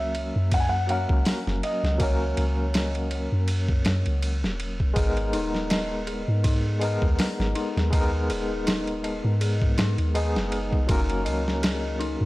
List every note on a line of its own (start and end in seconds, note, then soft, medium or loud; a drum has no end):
0.00 0.32 C#2 medium
0.00 0.84 F#3 medium
0.00 0.85 A#3 medium
0.00 0.86 C#4 medium
0.00 0.86 A#4 medium
0.00 0.49 E5 medium
0.15 ride medium
0.36 1.06 F#2 medium
0.51 0.61 F#5 loud
0.51 kick loud
0.51 ride medium
0.60 0.67 G#5 medium
0.69 0.89 F#5 loud
0.87 1.95 F#3 medium
0.87 1.96 A#3 medium
0.87 1.97 C#4 medium
0.87 1.60 F#5 loud
0.87 ride medium
0.91 1.97 A#4 medium
1.09 1.24 C#2 medium
1.09 kick medium
1.25 snare loud
1.25 open hi-hat medium
1.47 1.61 F#1 loud
1.47 snare soft
1.63 2.01 D#5 medium
1.63 ride medium
1.83 2.34 C#2 loud
1.83 snare soft
1.98 4.17 F#3 medium
1.98 4.18 A#3 medium
1.98 4.19 C#4 medium
1.98 4.56 C#5 medium
1.98 kick loud
1.98 ride medium
2.03 4.20 A#4 medium
2.37 3.28 C#2 medium
2.37 ride medium
2.74 snare loud
2.74 ride medium
2.95 ride soft
3.11 ride medium
3.32 3.82 F#2 medium
3.48 ride medium
3.69 kick medium
3.85 4.03 F#2 medium
3.85 snare loud
3.85 ride medium
4.06 4.45 C#2 medium
4.06 ride soft
4.22 ride medium
4.43 4.93 E1 medium
4.43 snare soft
4.60 ride medium
4.80 kick medium
4.94 5.35 G#1 loud
4.94 6.76 G#3 medium
4.94 6.77 B3 medium
4.94 6.78 D#4 medium
4.94 5.16 G#4 medium
4.94 kick loud
4.94 ride medium
4.98 6.79 A#4 loud
5.17 ride soft
5.33 6.24 D#1 medium
5.33 5.53 D#4 loud
5.33 ride medium
5.55 snare soft
5.70 5.82 D#5 loud
5.70 snare loud
5.70 ride medium
6.07 6.27 G#4 medium
6.07 ride medium
6.28 6.98 G#2 medium
6.44 6.64 D#4 medium
6.44 kick loud
6.44 ride medium
6.80 7.88 G#3 medium
6.80 7.89 B3 medium
6.80 7.89 D#4 medium
6.80 6.93 D#5 medium
6.80 ride medium
6.84 7.90 A#4 medium
7.02 7.17 D#2 medium
7.02 kick loud
7.18 7.38 G#4 medium
7.18 snare loud
7.18 open hi-hat medium
7.39 7.54 G#1 loud
7.39 snare soft
7.55 7.75 D#4 medium
7.55 ride medium
7.77 8.32 D#2 loud
7.77 snare medium
7.90 10.10 G#3 medium
7.90 10.10 B3 medium
7.90 10.11 D#4 medium
7.90 8.04 D#5 medium
7.90 kick loud
7.90 ride medium
7.94 10.12 A#4 medium
8.30 9.21 D#1 medium
8.30 8.49 G#4 medium
8.30 ride medium
8.67 8.86 D#4 loud
8.67 snare loud
8.67 ride medium
8.87 ride soft
9.04 9.15 D#5 medium
9.04 ride medium
9.24 9.75 G#2 medium
9.41 9.60 G#4 medium
9.41 ride medium
9.62 kick medium
9.78 9.96 G#2 medium
9.78 9.97 D#4 loud
9.78 snare loud
9.78 ride medium
9.98 10.37 D#2 medium
9.98 ride soft
10.14 10.85 G#3 medium
10.14 10.85 B3 medium
10.14 10.85 D#4 medium
10.14 10.86 G#4 medium
10.14 10.26 D#5 medium
10.14 ride medium
10.36 10.86 F#1 medium
10.36 snare soft
10.52 10.71 G#4 medium
10.52 ride medium
10.73 kick medium
10.87 11.28 F#1 loud
10.87 12.25 F#3 medium
10.87 12.25 A#3 medium
10.87 12.25 C#4 medium
10.87 11.08 D#4 loud
10.87 kick loud
10.87 ride medium
10.91 12.25 A#4 loud
11.10 ride soft
11.25 12.17 C#2 medium
11.25 11.37 D#5 loud
11.25 ride medium
11.48 snare soft
11.62 11.82 G#4 medium
11.62 snare loud
11.62 ride medium
11.99 12.19 D#4 loud
11.99 ride medium
12.21 12.25 F#2 medium